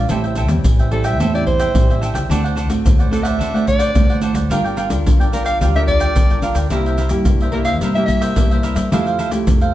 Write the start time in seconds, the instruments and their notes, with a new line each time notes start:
0.09 upright bass A1, nylon-string guitar A2 G3 C4 E4, cavaquinho A4 C5 E5 G5, pandeiro, shaker, surdo
0.24 cavaquinho C5 E5 G5, pandeiro, shaker
0.36 cavaquinho A4 C5 E5 G5, pandeiro, shaker
0.48 upright bass E2, nylon-string guitar G3 C4 E4, muted cavaquinho stroke, pandeiro, shaker
0.64 upright bass A1, nylon-string guitar E3, pandeiro, shaker, surdo
0.79 cavaquinho C5 E5 G5, pandeiro, shaker
0.91 nylon-string guitar G3 C4 E4, cavaquinho A4 C5 E5 G5, soprano saxophone A4, pandeiro
1.04 cavaquinho C5 E5 G5, soprano saxophone E5, pandeiro, shaker
1.19 upright bass E2, nylon-string guitar A2, cavaquinho A4 C5 E5 G5, pandeiro, shaker, surdo
1.33 nylon-string guitar G3 C4 E4, cavaquinho C5 E5 G5, soprano saxophone D5, pandeiro, shaker
1.47 soprano saxophone C5, muted cavaquinho stroke, pandeiro, surdo
1.60 cavaquinho C5 E5 G5, pandeiro, shaker
1.74 upright bass A1, nylon-string guitar E3 G3 C4 E4, pandeiro, shaker, surdo
1.90 cavaquinho C5 E5 G5, pandeiro, shaker
2.01 cavaquinho A4 C5 E5 G5, pandeiro, shaker
2.14 upright bass C#2, cavaquinho C5 E5 G5, pandeiro, shaker
2.29 upright bass D2, nylon-string guitar D3 A3 C4 F#4, cavaquinho D4 C5 D5 F#5, pandeiro, shaker, surdo
2.44 cavaquinho C5 D5 F#5, pandeiro, shaker
2.55 cavaquinho D4 C5 D5 F#5, pandeiro, shaker
2.69 upright bass A1, nylon-string guitar A3 C4 F#4, muted cavaquinho stroke, pandeiro, shaker
2.85 upright bass D2, nylon-string guitar A2, pandeiro, shaker, surdo
2.99 cavaquinho C5 D5 F#5, pandeiro, shaker
3.11 nylon-string guitar A3 C4 F#4, cavaquinho D4 C5 D5 F#5, soprano saxophone A4, pandeiro, shaker
3.23 cavaquinho C5 D5 F#5, soprano saxophone E5, pandeiro, shaker
3.39 upright bass A1, nylon-string guitar D3, cavaquinho D4 C5 D5 F#5, pandeiro, shaker, surdo
3.54 nylon-string guitar A3 C4 F#4, cavaquinho C5 D5 F#5, pandeiro, shaker
3.67 soprano saxophone D5, muted cavaquinho stroke, pandeiro, shaker, surdo
3.79 cavaquinho C5 D5 F#5, pandeiro, shaker
3.94 upright bass D2, nylon-string guitar A2 A3 C4 F#4, pandeiro, shaker, surdo
4.10 cavaquinho C5 D5 F#5, pandeiro, shaker
4.22 cavaquinho D4 C5 D5 F#5, pandeiro, shaker
4.34 upright bass D2, cavaquinho C5 D5 F#5, pandeiro, shaker
4.50 upright bass G1, nylon-string guitar G3 D4 F4 A#4, cavaquinho F4 A#4 D5 G5, pandeiro, shaker, surdo
4.64 cavaquinho A#4 D5 G5, pandeiro, shaker
4.77 cavaquinho F4 A#4 D5 G5, pandeiro, shaker
4.89 upright bass D2, nylon-string guitar D4 F4 A#4, muted cavaquinho stroke, pandeiro, shaker
5.05 upright bass G1, nylon-string guitar D3, pandeiro, shaker, surdo
5.20 cavaquinho A#4 D5 G5, pandeiro, shaker
5.32 nylon-string guitar D4 F4 A#4, cavaquinho F4 A#4 D5 G5, soprano saxophone A#4, pandeiro, shaker
5.45 cavaquinho A#4 D5 G5, soprano saxophone F5, pandeiro, shaker
5.61 upright bass D2, nylon-string guitar G3, cavaquinho F4 A#4 D5 G5, pandeiro, shaker, surdo
5.75 nylon-string guitar D4 F4 A#4, cavaquinho A#4 D5 G5, soprano saxophone E5, pandeiro, shaker
5.87 soprano saxophone D5, muted cavaquinho stroke, pandeiro, surdo
6.00 cavaquinho A#4 D5 G5, pandeiro, shaker
6.15 upright bass G1, nylon-string guitar D3 D4 F4 A#4, pandeiro, shaker, surdo
6.30 cavaquinho A#4 D5 G5, pandeiro, shaker
6.42 nylon-string guitar D4 F4 A#4, cavaquinho F4 A#4 D5 G5, pandeiro, shaker
6.55 upright bass D2, cavaquinho A#4 D5 G5, pandeiro, shaker
6.70 upright bass C2, nylon-string guitar C3 A#3 E4 G4, cavaquinho E4 A#4 C5 E5, pandeiro, shaker, surdo
6.86 cavaquinho A#4 C5 E5, pandeiro, shaker
6.97 cavaquinho E4 A#4 C5 E5, pandeiro, shaker
7.09 upright bass G2, nylon-string guitar A#3 E4 G4, muted cavaquinho stroke, pandeiro, shaker
7.25 upright bass C2, nylon-string guitar G2, pandeiro, shaker, surdo
7.40 cavaquinho A#4 C5 E5, pandeiro, shaker
7.52 nylon-string guitar A#3 E4 G4, cavaquinho E4 A#4 C5 E5, soprano saxophone A#4, pandeiro
7.64 cavaquinho A#4 C5 E5, soprano saxophone F5, pandeiro, shaker
7.81 upright bass G2, nylon-string guitar C3, cavaquinho E4 A#4 C5 E5, pandeiro, shaker, surdo
7.95 nylon-string guitar A#3 E4 G4, cavaquinho A#4 C5 E5, soprano saxophone E5, pandeiro, shaker
8.05 soprano saxophone E5, muted cavaquinho stroke, pandeiro, shaker, surdo
8.21 cavaquinho A#4 C5 E5, pandeiro, shaker
8.36 upright bass C2, nylon-string guitar G2 A#3 E4 G4, pandeiro, shaker, surdo
8.51 cavaquinho A#4 C5 E5, pandeiro, shaker
8.63 cavaquinho E4 A#4 C5 E5, pandeiro, shaker
8.76 upright bass G2, cavaquinho A#4 C5 E5, pandeiro, shaker
8.92 upright bass F2, nylon-string guitar F3 A3 E4 G4, cavaquinho E4 A4 C5 F5, pandeiro, shaker, surdo
9.07 cavaquinho A4 C5 F5, pandeiro, shaker
9.19 cavaquinho E4 A4 C5 F5, pandeiro, shaker
9.31 upright bass C2, nylon-string guitar A3 E4 G4, muted cavaquinho stroke, pandeiro, shaker
9.46 upright bass F2, nylon-string guitar C3, pandeiro, shaker, surdo
9.61 cavaquinho A4 C5 F5, pandeiro, shaker